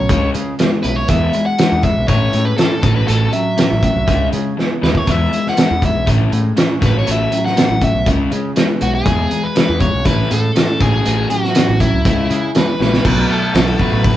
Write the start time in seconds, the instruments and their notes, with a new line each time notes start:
Already playing: overdriven electric guitar C#5
0.09 picked electric bass C#2, clean electric guitar C#3, overdriven electric guitar C#3 G#3 C#4, kick, closed hi-hat
0.34 overdriven electric guitar C#3 G#3, picked electric bass C#3, clean electric guitar G#3, closed hi-hat
0.59 overdriven electric guitar C#3 G#3, clean electric guitar B3, snare, closed hi-hat
0.83 picked electric bass B1, overdriven electric guitar C#3 G#3 B4, clean electric guitar E4, closed hi-hat
0.96 overdriven electric guitar C#5
1.08 picked electric bass E2, clean electric guitar E3, overdriven electric guitar E3 G#3 B3 E5, kick, closed hi-hat
1.33 overdriven electric guitar E3 G#3, clean electric guitar G#3, closed hi-hat
1.46 overdriven electric guitar F#5
1.58 clean electric guitar E3, overdriven electric guitar E3 G#3, snare, closed hi-hat
1.72 picked electric bass E2
1.83 overdriven electric guitar E3 G#3 E5, clean electric guitar G#3, kick, closed hi-hat
1.98 picked electric bass B1
2.08 picked electric bass A1, clean electric guitar A2, overdriven electric guitar A3 C#4 E4 C#5, kick, closed hi-hat
2.33 picked electric bass A2, clean electric guitar G#3, overdriven electric guitar A3 C#4, closed hi-hat
2.45 overdriven electric guitar B4
2.58 overdriven electric guitar A3 C#4 A4, clean electric guitar C#4, snare, closed hi-hat
2.82 picked electric bass A1, clean electric guitar A2, overdriven electric guitar A3 C#4 F#4, kick, closed hi-hat
2.96 overdriven electric guitar B4
3.07 picked electric bass A1, clean electric guitar A2, overdriven electric guitar A3 C#4 F#4 A4, closed hi-hat
3.32 clean electric guitar F#3, overdriven electric guitar A3 C#4 E5, closed hi-hat
3.57 clean electric guitar A2, overdriven electric guitar A3 C#4, snare, closed hi-hat
3.71 picked electric bass A1
3.83 clean electric guitar F#3, overdriven electric guitar A3 C#4, kick, closed hi-hat
3.96 picked electric bass C2
4.07 picked electric bass C#2, overdriven electric guitar C#3 G#3 C#4, clean electric guitar C#3, kick, closed hi-hat
4.32 overdriven electric guitar C#3 G#3, picked electric bass C#3, clean electric guitar G#3, closed hi-hat
4.57 overdriven electric guitar C#3 G#3, clean electric guitar B3, snare
4.82 picked electric bass D#2, overdriven electric guitar C#3 G#3 B4, clean electric guitar E4, snare
4.95 overdriven electric guitar C#5, kick
5.07 picked electric bass E2, overdriven electric guitar E3 G#3 B3 E5, clean electric guitar E3, kick, closed hi-hat
5.32 overdriven electric guitar E3 G#3, clean electric guitar G#3, closed hi-hat
5.46 overdriven electric guitar F#5, snare
5.57 overdriven electric guitar E3 G#3, clean electric guitar E3, snare, closed hi-hat
5.71 picked electric bass E2
5.82 overdriven electric guitar E3 G#3 E5, clean electric guitar G#3, kick, closed hi-hat
5.95 picked electric bass B1
6.06 picked electric bass A1, clean electric guitar A2, overdriven electric guitar A3 C#4 E4, kick, closed hi-hat
6.32 picked electric bass A2, clean electric guitar G#3, overdriven electric guitar A3 C#4, closed hi-hat
6.56 overdriven electric guitar A3 C#4, clean electric guitar C#4, snare, closed hi-hat
6.81 picked electric bass A1, clean electric guitar A2, overdriven electric guitar A3 C#4 F#4, kick, snare, closed hi-hat
6.86 overdriven electric guitar B4
6.99 overdriven electric guitar C#5
7.07 picked electric bass A1, clean electric guitar A2, overdriven electric guitar A3 C#4 F#4, closed hi-hat
7.11 overdriven electric guitar E5
7.31 clean electric guitar F#3, overdriven electric guitar A3 C#4, closed hi-hat
7.46 overdriven electric guitar F#5, snare
7.57 clean electric guitar A2, overdriven electric guitar A3 C#4, snare, closed hi-hat
7.70 picked electric bass A1
7.81 clean electric guitar F#3, overdriven electric guitar A3 C#4 E5, kick, closed hi-hat
7.95 picked electric bass B1
8.06 picked electric bass C#2, overdriven electric guitar C#3 G#3 C#4, clean electric guitar C#3, kick, closed hi-hat
8.31 overdriven electric guitar C#3 G#3, picked electric bass C#3, clean electric guitar G#3, closed hi-hat
8.56 overdriven electric guitar C#3 G#3, clean electric guitar B3, snare, closed hi-hat
8.81 picked electric bass B1, overdriven electric guitar C#3 G#3 F#4, clean electric guitar E4, closed hi-hat
8.95 overdriven electric guitar G#4
9.05 picked electric bass E2, overdriven electric guitar E3 G#3 B3, clean electric guitar E3, kick, closed hi-hat
9.31 overdriven electric guitar E3 G#3, clean electric guitar G#3, closed hi-hat
9.43 overdriven electric guitar B4
9.55 overdriven electric guitar E3 G#3, clean electric guitar E3, snare, closed hi-hat
9.69 picked electric bass E2
9.80 overdriven electric guitar E3 G#3 C#5, clean electric guitar G#3, kick, closed hi-hat
9.94 picked electric bass B1
10.05 picked electric bass A1, clean electric guitar A2, overdriven electric guitar A3 C#4 E4 B4, kick, closed hi-hat
10.31 picked electric bass A2, clean electric guitar G#3, overdriven electric guitar A3 C#4 A4, closed hi-hat
10.56 overdriven electric guitar A3 C#4, clean electric guitar C#4, snare, closed hi-hat
10.80 picked electric bass A1, clean electric guitar A2, overdriven electric guitar A3 C#4 F#4 G#4, kick, closed hi-hat
11.05 picked electric bass A1, clean electric guitar A2, overdriven electric guitar A3 C#4 F#4, closed hi-hat
11.30 clean electric guitar F#3, overdriven electric guitar A3 C#4 F#4, closed hi-hat
11.44 snare
11.55 clean electric guitar A2, overdriven electric guitar A3 C#4, snare, closed hi-hat
11.69 picked electric bass A1
11.80 clean electric guitar F#3, overdriven electric guitar A3 C#4 E4, kick, closed hi-hat
11.94 picked electric bass C#2
12.05 picked electric bass C#2, clean electric guitar C#3, overdriven electric guitar C#3 G#3 C#4, kick, closed hi-hat
12.30 overdriven electric guitar C#3 G#3, picked electric bass C#3, clean electric guitar G#3, closed hi-hat
12.55 overdriven electric guitar C#3 G#3 B4, clean electric guitar B3, snare, closed hi-hat
12.79 picked electric bass A#1, overdriven electric guitar C#3 G#3 B4, clean electric guitar E4, snare
12.94 snare
13.04 picked electric bass B1, clean electric guitar B2 F#3 A3, overdriven electric guitar B2 B4, kick, crash
13.29 clean electric guitar B2 F#3, overdriven electric guitar A3 A4
13.54 picked electric bass B1, clean electric guitar B2 F#3, overdriven electric guitar F#4, snare, open hi-hat
13.79 clean electric guitar B2 F#3 A3, overdriven electric guitar A3 B4, kick
13.93 picked electric bass A1
14.04 clean electric guitar B2 F#3, overdriven electric guitar E3 B4, kick, open hi-hat